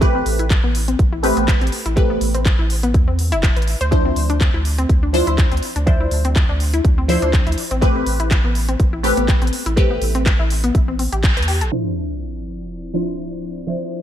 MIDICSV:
0, 0, Header, 1, 7, 480
1, 0, Start_track
1, 0, Tempo, 487805
1, 17, Time_signature, 4, 2, 24, 8
1, 13797, End_track
2, 0, Start_track
2, 0, Title_t, "Synth stab"
2, 0, Program_c, 0, 62
2, 9, Note_on_c, 0, 57, 99
2, 14, Note_on_c, 0, 60, 90
2, 18, Note_on_c, 0, 67, 88
2, 23, Note_on_c, 0, 71, 111
2, 1186, Note_off_c, 0, 57, 0
2, 1189, Note_off_c, 0, 60, 0
2, 1191, Note_off_c, 0, 67, 0
2, 1194, Note_off_c, 0, 71, 0
2, 1209, Note_on_c, 0, 57, 85
2, 1214, Note_on_c, 0, 60, 75
2, 1218, Note_on_c, 0, 67, 74
2, 1223, Note_on_c, 0, 71, 93
2, 1906, Note_off_c, 0, 57, 0
2, 1909, Note_off_c, 0, 60, 0
2, 1911, Note_off_c, 0, 67, 0
2, 1914, Note_off_c, 0, 71, 0
2, 1929, Note_on_c, 0, 57, 87
2, 1934, Note_on_c, 0, 60, 79
2, 1938, Note_on_c, 0, 67, 79
2, 1943, Note_on_c, 0, 71, 92
2, 3106, Note_off_c, 0, 57, 0
2, 3109, Note_off_c, 0, 60, 0
2, 3111, Note_off_c, 0, 67, 0
2, 3114, Note_off_c, 0, 71, 0
2, 3849, Note_on_c, 0, 53, 100
2, 3854, Note_on_c, 0, 62, 92
2, 3859, Note_on_c, 0, 64, 91
2, 3864, Note_on_c, 0, 72, 108
2, 5027, Note_off_c, 0, 53, 0
2, 5029, Note_off_c, 0, 62, 0
2, 5031, Note_off_c, 0, 64, 0
2, 5034, Note_off_c, 0, 72, 0
2, 5049, Note_on_c, 0, 53, 90
2, 5054, Note_on_c, 0, 62, 78
2, 5059, Note_on_c, 0, 64, 82
2, 5064, Note_on_c, 0, 72, 94
2, 5747, Note_off_c, 0, 53, 0
2, 5749, Note_off_c, 0, 62, 0
2, 5751, Note_off_c, 0, 64, 0
2, 5754, Note_off_c, 0, 72, 0
2, 5769, Note_on_c, 0, 53, 86
2, 5774, Note_on_c, 0, 62, 76
2, 5778, Note_on_c, 0, 64, 78
2, 5783, Note_on_c, 0, 72, 93
2, 6946, Note_off_c, 0, 53, 0
2, 6949, Note_off_c, 0, 62, 0
2, 6951, Note_off_c, 0, 64, 0
2, 6954, Note_off_c, 0, 72, 0
2, 6969, Note_on_c, 0, 53, 94
2, 6974, Note_on_c, 0, 62, 86
2, 6979, Note_on_c, 0, 64, 89
2, 6983, Note_on_c, 0, 72, 108
2, 7667, Note_off_c, 0, 53, 0
2, 7669, Note_off_c, 0, 62, 0
2, 7671, Note_off_c, 0, 64, 0
2, 7674, Note_off_c, 0, 72, 0
2, 7689, Note_on_c, 0, 57, 100
2, 7694, Note_on_c, 0, 60, 89
2, 7699, Note_on_c, 0, 67, 94
2, 7704, Note_on_c, 0, 71, 111
2, 8867, Note_off_c, 0, 57, 0
2, 8869, Note_off_c, 0, 60, 0
2, 8872, Note_off_c, 0, 67, 0
2, 8874, Note_off_c, 0, 71, 0
2, 8889, Note_on_c, 0, 57, 87
2, 8894, Note_on_c, 0, 60, 82
2, 8899, Note_on_c, 0, 67, 79
2, 8904, Note_on_c, 0, 71, 93
2, 9587, Note_off_c, 0, 57, 0
2, 9589, Note_off_c, 0, 60, 0
2, 9591, Note_off_c, 0, 67, 0
2, 9594, Note_off_c, 0, 71, 0
2, 9609, Note_on_c, 0, 57, 86
2, 9614, Note_on_c, 0, 60, 79
2, 9618, Note_on_c, 0, 67, 81
2, 9623, Note_on_c, 0, 71, 96
2, 10787, Note_off_c, 0, 57, 0
2, 10789, Note_off_c, 0, 60, 0
2, 10791, Note_off_c, 0, 67, 0
2, 10794, Note_off_c, 0, 71, 0
2, 11529, Note_on_c, 0, 53, 100
2, 11534, Note_on_c, 0, 62, 85
2, 11539, Note_on_c, 0, 64, 88
2, 11543, Note_on_c, 0, 72, 103
2, 12707, Note_off_c, 0, 53, 0
2, 12709, Note_off_c, 0, 62, 0
2, 12712, Note_off_c, 0, 64, 0
2, 12714, Note_off_c, 0, 72, 0
2, 12729, Note_on_c, 0, 53, 83
2, 12734, Note_on_c, 0, 62, 75
2, 12739, Note_on_c, 0, 64, 78
2, 12744, Note_on_c, 0, 72, 91
2, 13427, Note_off_c, 0, 53, 0
2, 13429, Note_off_c, 0, 62, 0
2, 13431, Note_off_c, 0, 64, 0
2, 13434, Note_off_c, 0, 72, 0
2, 13449, Note_on_c, 0, 53, 82
2, 13454, Note_on_c, 0, 62, 73
2, 13459, Note_on_c, 0, 64, 78
2, 13464, Note_on_c, 0, 72, 93
2, 13797, Note_off_c, 0, 53, 0
2, 13797, Note_off_c, 0, 62, 0
2, 13797, Note_off_c, 0, 64, 0
2, 13797, Note_off_c, 0, 72, 0
2, 13797, End_track
3, 0, Start_track
3, 0, Title_t, "Analog synth pad"
3, 0, Program_c, 1, 89
3, 11537, Note_on_c, 1, 53, 69
3, 11537, Note_on_c, 1, 60, 75
3, 11537, Note_on_c, 1, 64, 72
3, 11537, Note_on_c, 1, 74, 85
3, 13797, Note_off_c, 1, 53, 0
3, 13797, Note_off_c, 1, 60, 0
3, 13797, Note_off_c, 1, 64, 0
3, 13797, Note_off_c, 1, 74, 0
3, 13797, End_track
4, 0, Start_track
4, 0, Title_t, "Synth arpeggio sound"
4, 0, Program_c, 2, 84
4, 147, Note_on_c, 2, 60, 78
4, 211, Note_off_c, 2, 60, 0
4, 387, Note_on_c, 2, 64, 75
4, 451, Note_off_c, 2, 64, 0
4, 627, Note_on_c, 2, 59, 77
4, 723, Note_off_c, 2, 59, 0
4, 867, Note_on_c, 2, 60, 76
4, 931, Note_off_c, 2, 60, 0
4, 1107, Note_on_c, 2, 64, 76
4, 1171, Note_off_c, 2, 64, 0
4, 1347, Note_on_c, 2, 59, 83
4, 1443, Note_off_c, 2, 59, 0
4, 1587, Note_on_c, 2, 60, 81
4, 1651, Note_off_c, 2, 60, 0
4, 1827, Note_on_c, 2, 64, 77
4, 1891, Note_off_c, 2, 64, 0
4, 2067, Note_on_c, 2, 59, 77
4, 2163, Note_off_c, 2, 59, 0
4, 2307, Note_on_c, 2, 60, 77
4, 2371, Note_off_c, 2, 60, 0
4, 2547, Note_on_c, 2, 64, 82
4, 2611, Note_off_c, 2, 64, 0
4, 2787, Note_on_c, 2, 59, 77
4, 2883, Note_off_c, 2, 59, 0
4, 3027, Note_on_c, 2, 60, 75
4, 3091, Note_off_c, 2, 60, 0
4, 3267, Note_on_c, 2, 64, 107
4, 3363, Note_off_c, 2, 64, 0
4, 3508, Note_on_c, 2, 71, 76
4, 3603, Note_off_c, 2, 71, 0
4, 3747, Note_on_c, 2, 72, 100
4, 3786, Note_off_c, 2, 72, 0
4, 3987, Note_on_c, 2, 60, 79
4, 4083, Note_off_c, 2, 60, 0
4, 4228, Note_on_c, 2, 62, 77
4, 4291, Note_off_c, 2, 62, 0
4, 4467, Note_on_c, 2, 64, 83
4, 4531, Note_off_c, 2, 64, 0
4, 4707, Note_on_c, 2, 60, 78
4, 4803, Note_off_c, 2, 60, 0
4, 4947, Note_on_c, 2, 62, 75
4, 5011, Note_off_c, 2, 62, 0
4, 5187, Note_on_c, 2, 64, 80
4, 5251, Note_off_c, 2, 64, 0
4, 5427, Note_on_c, 2, 60, 76
4, 5523, Note_off_c, 2, 60, 0
4, 5667, Note_on_c, 2, 62, 73
4, 5731, Note_off_c, 2, 62, 0
4, 5908, Note_on_c, 2, 64, 77
4, 5971, Note_off_c, 2, 64, 0
4, 6148, Note_on_c, 2, 60, 78
4, 6243, Note_off_c, 2, 60, 0
4, 6388, Note_on_c, 2, 62, 76
4, 6451, Note_off_c, 2, 62, 0
4, 6628, Note_on_c, 2, 64, 80
4, 6691, Note_off_c, 2, 64, 0
4, 6868, Note_on_c, 2, 60, 76
4, 6963, Note_off_c, 2, 60, 0
4, 7108, Note_on_c, 2, 62, 84
4, 7171, Note_off_c, 2, 62, 0
4, 7347, Note_on_c, 2, 64, 78
4, 7411, Note_off_c, 2, 64, 0
4, 7588, Note_on_c, 2, 60, 78
4, 7683, Note_off_c, 2, 60, 0
4, 7828, Note_on_c, 2, 60, 74
4, 7891, Note_off_c, 2, 60, 0
4, 8067, Note_on_c, 2, 64, 74
4, 8131, Note_off_c, 2, 64, 0
4, 8307, Note_on_c, 2, 59, 75
4, 8403, Note_off_c, 2, 59, 0
4, 8547, Note_on_c, 2, 60, 77
4, 8611, Note_off_c, 2, 60, 0
4, 8787, Note_on_c, 2, 64, 75
4, 8851, Note_off_c, 2, 64, 0
4, 9027, Note_on_c, 2, 59, 79
4, 9123, Note_off_c, 2, 59, 0
4, 9267, Note_on_c, 2, 60, 80
4, 9331, Note_off_c, 2, 60, 0
4, 9507, Note_on_c, 2, 64, 78
4, 9571, Note_off_c, 2, 64, 0
4, 9747, Note_on_c, 2, 59, 76
4, 9843, Note_off_c, 2, 59, 0
4, 9987, Note_on_c, 2, 60, 79
4, 10051, Note_off_c, 2, 60, 0
4, 10227, Note_on_c, 2, 64, 82
4, 10291, Note_off_c, 2, 64, 0
4, 10467, Note_on_c, 2, 59, 77
4, 10563, Note_off_c, 2, 59, 0
4, 10707, Note_on_c, 2, 60, 73
4, 10771, Note_off_c, 2, 60, 0
4, 10816, Note_on_c, 2, 60, 75
4, 10893, Note_off_c, 2, 60, 0
4, 10947, Note_on_c, 2, 67, 81
4, 11011, Note_off_c, 2, 67, 0
4, 11187, Note_on_c, 2, 71, 76
4, 11283, Note_off_c, 2, 71, 0
4, 11296, Note_on_c, 2, 67, 77
4, 11373, Note_off_c, 2, 67, 0
4, 11427, Note_on_c, 2, 69, 79
4, 11466, Note_off_c, 2, 69, 0
4, 13797, End_track
5, 0, Start_track
5, 0, Title_t, "Sub bass"
5, 0, Program_c, 3, 38
5, 0, Note_on_c, 3, 33, 96
5, 221, Note_off_c, 3, 33, 0
5, 256, Note_on_c, 3, 33, 103
5, 585, Note_off_c, 3, 33, 0
5, 627, Note_on_c, 3, 33, 98
5, 941, Note_off_c, 3, 33, 0
5, 976, Note_on_c, 3, 33, 85
5, 1305, Note_off_c, 3, 33, 0
5, 1347, Note_on_c, 3, 33, 92
5, 1534, Note_off_c, 3, 33, 0
5, 1587, Note_on_c, 3, 33, 98
5, 1674, Note_off_c, 3, 33, 0
5, 1827, Note_on_c, 3, 33, 90
5, 2141, Note_off_c, 3, 33, 0
5, 2176, Note_on_c, 3, 33, 105
5, 2505, Note_off_c, 3, 33, 0
5, 2547, Note_on_c, 3, 33, 102
5, 2897, Note_on_c, 3, 40, 98
5, 2911, Note_off_c, 3, 33, 0
5, 3267, Note_on_c, 3, 28, 89
5, 3282, Note_off_c, 3, 40, 0
5, 3454, Note_off_c, 3, 28, 0
5, 3507, Note_on_c, 3, 33, 97
5, 3694, Note_off_c, 3, 33, 0
5, 3747, Note_on_c, 3, 38, 91
5, 4061, Note_off_c, 3, 38, 0
5, 4097, Note_on_c, 3, 38, 100
5, 4425, Note_off_c, 3, 38, 0
5, 4467, Note_on_c, 3, 38, 95
5, 4781, Note_off_c, 3, 38, 0
5, 4816, Note_on_c, 3, 38, 87
5, 5145, Note_off_c, 3, 38, 0
5, 5187, Note_on_c, 3, 38, 93
5, 5374, Note_off_c, 3, 38, 0
5, 5427, Note_on_c, 3, 38, 98
5, 5514, Note_off_c, 3, 38, 0
5, 5667, Note_on_c, 3, 38, 91
5, 5981, Note_off_c, 3, 38, 0
5, 6016, Note_on_c, 3, 38, 106
5, 6345, Note_off_c, 3, 38, 0
5, 6387, Note_on_c, 3, 38, 98
5, 6701, Note_off_c, 3, 38, 0
5, 6737, Note_on_c, 3, 38, 86
5, 7065, Note_off_c, 3, 38, 0
5, 7107, Note_on_c, 3, 38, 94
5, 7294, Note_off_c, 3, 38, 0
5, 7347, Note_on_c, 3, 38, 104
5, 7434, Note_off_c, 3, 38, 0
5, 7587, Note_on_c, 3, 33, 93
5, 7901, Note_off_c, 3, 33, 0
5, 7936, Note_on_c, 3, 33, 96
5, 8265, Note_off_c, 3, 33, 0
5, 8307, Note_on_c, 3, 33, 104
5, 8621, Note_off_c, 3, 33, 0
5, 8656, Note_on_c, 3, 33, 85
5, 8985, Note_off_c, 3, 33, 0
5, 9027, Note_on_c, 3, 33, 92
5, 9214, Note_off_c, 3, 33, 0
5, 9267, Note_on_c, 3, 33, 103
5, 9354, Note_off_c, 3, 33, 0
5, 9507, Note_on_c, 3, 33, 96
5, 9821, Note_off_c, 3, 33, 0
5, 9856, Note_on_c, 3, 33, 101
5, 10185, Note_off_c, 3, 33, 0
5, 10227, Note_on_c, 3, 33, 101
5, 10541, Note_off_c, 3, 33, 0
5, 10576, Note_on_c, 3, 33, 85
5, 10905, Note_off_c, 3, 33, 0
5, 10947, Note_on_c, 3, 33, 92
5, 11187, Note_on_c, 3, 40, 82
5, 11202, Note_off_c, 3, 33, 0
5, 11428, Note_on_c, 3, 33, 83
5, 11442, Note_off_c, 3, 40, 0
5, 11514, Note_off_c, 3, 33, 0
5, 13797, End_track
6, 0, Start_track
6, 0, Title_t, "Sub drop"
6, 0, Program_c, 4, 103
6, 11536, Note_on_c, 4, 60, 69
6, 13456, Note_off_c, 4, 60, 0
6, 13797, End_track
7, 0, Start_track
7, 0, Title_t, "Drums"
7, 16, Note_on_c, 9, 36, 125
7, 16, Note_on_c, 9, 42, 63
7, 115, Note_off_c, 9, 36, 0
7, 115, Note_off_c, 9, 42, 0
7, 256, Note_on_c, 9, 46, 108
7, 355, Note_off_c, 9, 46, 0
7, 387, Note_on_c, 9, 42, 51
7, 486, Note_off_c, 9, 42, 0
7, 496, Note_on_c, 9, 36, 125
7, 496, Note_on_c, 9, 42, 65
7, 498, Note_on_c, 9, 39, 116
7, 595, Note_off_c, 9, 36, 0
7, 595, Note_off_c, 9, 42, 0
7, 596, Note_off_c, 9, 39, 0
7, 736, Note_on_c, 9, 46, 112
7, 835, Note_off_c, 9, 46, 0
7, 867, Note_on_c, 9, 42, 51
7, 966, Note_off_c, 9, 42, 0
7, 976, Note_on_c, 9, 36, 122
7, 976, Note_on_c, 9, 42, 60
7, 1075, Note_off_c, 9, 36, 0
7, 1075, Note_off_c, 9, 42, 0
7, 1216, Note_on_c, 9, 46, 107
7, 1315, Note_off_c, 9, 46, 0
7, 1348, Note_on_c, 9, 42, 51
7, 1446, Note_off_c, 9, 42, 0
7, 1456, Note_on_c, 9, 36, 126
7, 1457, Note_on_c, 9, 42, 64
7, 1458, Note_on_c, 9, 39, 121
7, 1555, Note_off_c, 9, 36, 0
7, 1555, Note_off_c, 9, 42, 0
7, 1556, Note_off_c, 9, 39, 0
7, 1588, Note_on_c, 9, 42, 50
7, 1642, Note_off_c, 9, 42, 0
7, 1642, Note_on_c, 9, 42, 62
7, 1696, Note_on_c, 9, 46, 110
7, 1740, Note_off_c, 9, 42, 0
7, 1795, Note_off_c, 9, 46, 0
7, 1828, Note_on_c, 9, 42, 51
7, 1926, Note_off_c, 9, 42, 0
7, 1936, Note_on_c, 9, 36, 120
7, 1936, Note_on_c, 9, 42, 65
7, 2035, Note_off_c, 9, 36, 0
7, 2035, Note_off_c, 9, 42, 0
7, 2176, Note_on_c, 9, 46, 102
7, 2275, Note_off_c, 9, 46, 0
7, 2307, Note_on_c, 9, 42, 49
7, 2406, Note_off_c, 9, 42, 0
7, 2416, Note_on_c, 9, 36, 122
7, 2416, Note_on_c, 9, 42, 62
7, 2418, Note_on_c, 9, 39, 112
7, 2515, Note_off_c, 9, 36, 0
7, 2515, Note_off_c, 9, 42, 0
7, 2516, Note_off_c, 9, 39, 0
7, 2656, Note_on_c, 9, 46, 106
7, 2755, Note_off_c, 9, 46, 0
7, 2787, Note_on_c, 9, 42, 50
7, 2886, Note_off_c, 9, 42, 0
7, 2896, Note_on_c, 9, 36, 127
7, 2896, Note_on_c, 9, 42, 57
7, 2995, Note_off_c, 9, 36, 0
7, 2995, Note_off_c, 9, 42, 0
7, 3136, Note_on_c, 9, 46, 102
7, 3235, Note_off_c, 9, 46, 0
7, 3268, Note_on_c, 9, 42, 51
7, 3366, Note_off_c, 9, 42, 0
7, 3376, Note_on_c, 9, 36, 124
7, 3376, Note_on_c, 9, 42, 65
7, 3377, Note_on_c, 9, 39, 118
7, 3475, Note_off_c, 9, 36, 0
7, 3475, Note_off_c, 9, 42, 0
7, 3476, Note_off_c, 9, 39, 0
7, 3507, Note_on_c, 9, 42, 50
7, 3562, Note_off_c, 9, 42, 0
7, 3562, Note_on_c, 9, 42, 64
7, 3616, Note_on_c, 9, 46, 109
7, 3660, Note_off_c, 9, 42, 0
7, 3715, Note_off_c, 9, 46, 0
7, 3748, Note_on_c, 9, 42, 50
7, 3846, Note_off_c, 9, 42, 0
7, 3856, Note_on_c, 9, 36, 120
7, 3857, Note_on_c, 9, 42, 62
7, 3955, Note_off_c, 9, 36, 0
7, 3955, Note_off_c, 9, 42, 0
7, 4097, Note_on_c, 9, 46, 106
7, 4195, Note_off_c, 9, 46, 0
7, 4228, Note_on_c, 9, 42, 49
7, 4326, Note_off_c, 9, 42, 0
7, 4336, Note_on_c, 9, 36, 115
7, 4336, Note_on_c, 9, 42, 63
7, 4338, Note_on_c, 9, 39, 106
7, 4435, Note_off_c, 9, 36, 0
7, 4435, Note_off_c, 9, 42, 0
7, 4436, Note_off_c, 9, 39, 0
7, 4576, Note_on_c, 9, 46, 107
7, 4675, Note_off_c, 9, 46, 0
7, 4708, Note_on_c, 9, 42, 50
7, 4806, Note_off_c, 9, 42, 0
7, 4816, Note_on_c, 9, 36, 113
7, 4817, Note_on_c, 9, 42, 61
7, 4915, Note_off_c, 9, 36, 0
7, 4915, Note_off_c, 9, 42, 0
7, 5056, Note_on_c, 9, 46, 102
7, 5155, Note_off_c, 9, 46, 0
7, 5188, Note_on_c, 9, 42, 50
7, 5286, Note_off_c, 9, 42, 0
7, 5296, Note_on_c, 9, 36, 120
7, 5296, Note_on_c, 9, 42, 64
7, 5298, Note_on_c, 9, 39, 117
7, 5395, Note_off_c, 9, 36, 0
7, 5395, Note_off_c, 9, 42, 0
7, 5396, Note_off_c, 9, 39, 0
7, 5428, Note_on_c, 9, 42, 48
7, 5482, Note_off_c, 9, 42, 0
7, 5482, Note_on_c, 9, 42, 64
7, 5536, Note_on_c, 9, 46, 101
7, 5580, Note_off_c, 9, 42, 0
7, 5635, Note_off_c, 9, 46, 0
7, 5667, Note_on_c, 9, 42, 50
7, 5766, Note_off_c, 9, 42, 0
7, 5776, Note_on_c, 9, 36, 113
7, 5776, Note_on_c, 9, 42, 65
7, 5875, Note_off_c, 9, 36, 0
7, 5875, Note_off_c, 9, 42, 0
7, 6016, Note_on_c, 9, 46, 99
7, 6114, Note_off_c, 9, 46, 0
7, 6147, Note_on_c, 9, 42, 50
7, 6246, Note_off_c, 9, 42, 0
7, 6256, Note_on_c, 9, 36, 114
7, 6256, Note_on_c, 9, 42, 65
7, 6257, Note_on_c, 9, 39, 109
7, 6354, Note_off_c, 9, 42, 0
7, 6355, Note_off_c, 9, 36, 0
7, 6356, Note_off_c, 9, 39, 0
7, 6496, Note_on_c, 9, 46, 102
7, 6594, Note_off_c, 9, 46, 0
7, 6627, Note_on_c, 9, 42, 50
7, 6726, Note_off_c, 9, 42, 0
7, 6736, Note_on_c, 9, 36, 115
7, 6736, Note_on_c, 9, 42, 62
7, 6834, Note_off_c, 9, 42, 0
7, 6835, Note_off_c, 9, 36, 0
7, 6976, Note_on_c, 9, 46, 98
7, 7074, Note_off_c, 9, 46, 0
7, 7107, Note_on_c, 9, 42, 52
7, 7206, Note_off_c, 9, 42, 0
7, 7216, Note_on_c, 9, 36, 114
7, 7216, Note_on_c, 9, 42, 66
7, 7217, Note_on_c, 9, 39, 114
7, 7315, Note_off_c, 9, 36, 0
7, 7315, Note_off_c, 9, 42, 0
7, 7316, Note_off_c, 9, 39, 0
7, 7347, Note_on_c, 9, 42, 53
7, 7402, Note_off_c, 9, 42, 0
7, 7402, Note_on_c, 9, 42, 68
7, 7456, Note_on_c, 9, 46, 105
7, 7500, Note_off_c, 9, 42, 0
7, 7554, Note_off_c, 9, 46, 0
7, 7587, Note_on_c, 9, 42, 54
7, 7685, Note_off_c, 9, 42, 0
7, 7696, Note_on_c, 9, 36, 111
7, 7696, Note_on_c, 9, 42, 69
7, 7794, Note_off_c, 9, 42, 0
7, 7795, Note_off_c, 9, 36, 0
7, 7936, Note_on_c, 9, 46, 105
7, 8034, Note_off_c, 9, 46, 0
7, 8067, Note_on_c, 9, 42, 54
7, 8165, Note_off_c, 9, 42, 0
7, 8176, Note_on_c, 9, 36, 115
7, 8176, Note_on_c, 9, 42, 66
7, 8177, Note_on_c, 9, 39, 120
7, 8274, Note_off_c, 9, 42, 0
7, 8275, Note_off_c, 9, 36, 0
7, 8276, Note_off_c, 9, 39, 0
7, 8416, Note_on_c, 9, 46, 105
7, 8514, Note_off_c, 9, 46, 0
7, 8547, Note_on_c, 9, 42, 52
7, 8645, Note_off_c, 9, 42, 0
7, 8656, Note_on_c, 9, 36, 115
7, 8656, Note_on_c, 9, 42, 66
7, 8754, Note_off_c, 9, 42, 0
7, 8755, Note_off_c, 9, 36, 0
7, 8896, Note_on_c, 9, 46, 100
7, 8994, Note_off_c, 9, 46, 0
7, 9027, Note_on_c, 9, 42, 55
7, 9126, Note_off_c, 9, 42, 0
7, 9136, Note_on_c, 9, 36, 115
7, 9136, Note_on_c, 9, 42, 71
7, 9137, Note_on_c, 9, 39, 112
7, 9234, Note_off_c, 9, 42, 0
7, 9235, Note_off_c, 9, 36, 0
7, 9236, Note_off_c, 9, 39, 0
7, 9267, Note_on_c, 9, 42, 53
7, 9322, Note_off_c, 9, 42, 0
7, 9322, Note_on_c, 9, 42, 66
7, 9376, Note_on_c, 9, 46, 98
7, 9420, Note_off_c, 9, 42, 0
7, 9474, Note_off_c, 9, 46, 0
7, 9507, Note_on_c, 9, 42, 56
7, 9606, Note_off_c, 9, 42, 0
7, 9616, Note_on_c, 9, 36, 112
7, 9616, Note_on_c, 9, 42, 71
7, 9714, Note_off_c, 9, 42, 0
7, 9715, Note_off_c, 9, 36, 0
7, 9856, Note_on_c, 9, 46, 102
7, 9955, Note_off_c, 9, 46, 0
7, 9987, Note_on_c, 9, 42, 53
7, 10086, Note_off_c, 9, 42, 0
7, 10096, Note_on_c, 9, 36, 115
7, 10096, Note_on_c, 9, 42, 71
7, 10097, Note_on_c, 9, 39, 119
7, 10194, Note_off_c, 9, 42, 0
7, 10195, Note_off_c, 9, 36, 0
7, 10196, Note_off_c, 9, 39, 0
7, 10336, Note_on_c, 9, 46, 102
7, 10435, Note_off_c, 9, 46, 0
7, 10467, Note_on_c, 9, 42, 57
7, 10566, Note_off_c, 9, 42, 0
7, 10576, Note_on_c, 9, 36, 113
7, 10576, Note_on_c, 9, 42, 68
7, 10675, Note_off_c, 9, 36, 0
7, 10675, Note_off_c, 9, 42, 0
7, 10816, Note_on_c, 9, 46, 101
7, 10915, Note_off_c, 9, 46, 0
7, 10947, Note_on_c, 9, 42, 57
7, 11046, Note_off_c, 9, 42, 0
7, 11056, Note_on_c, 9, 36, 114
7, 11056, Note_on_c, 9, 42, 72
7, 11058, Note_on_c, 9, 39, 126
7, 11155, Note_off_c, 9, 36, 0
7, 11155, Note_off_c, 9, 42, 0
7, 11156, Note_off_c, 9, 39, 0
7, 11187, Note_on_c, 9, 42, 56
7, 11242, Note_off_c, 9, 42, 0
7, 11242, Note_on_c, 9, 42, 73
7, 11296, Note_on_c, 9, 46, 103
7, 11340, Note_off_c, 9, 42, 0
7, 11394, Note_off_c, 9, 46, 0
7, 11427, Note_on_c, 9, 42, 57
7, 11525, Note_off_c, 9, 42, 0
7, 13797, End_track
0, 0, End_of_file